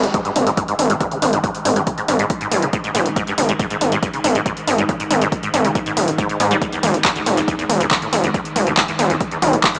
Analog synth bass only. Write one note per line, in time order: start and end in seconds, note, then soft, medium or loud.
0.36 0.49 G#1 medium
0.79 0.92 G#1 loud
1.22 1.35 G#1 medium
1.65 1.78 G#1 medium
2.08 2.21 G#1 medium
2.51 2.65 D#1 medium
2.95 3.08 D#1 medium
3.38 3.51 G#1 medium
3.81 3.94 G#1 medium
4.24 4.37 G#1 loud
4.67 4.81 G#1 medium
5.11 5.24 G#1 medium
5.54 5.67 G#1 medium
5.97 6.10 D#1 loud
6.40 6.53 G#2 loud
6.83 6.96 E1 loud
7.26 7.39 E1 medium
7.69 7.83 E1 loud
8.13 8.26 E1 medium
8.56 8.69 E1 medium
8.99 9.12 E1 medium
9.42 9.55 B1 loud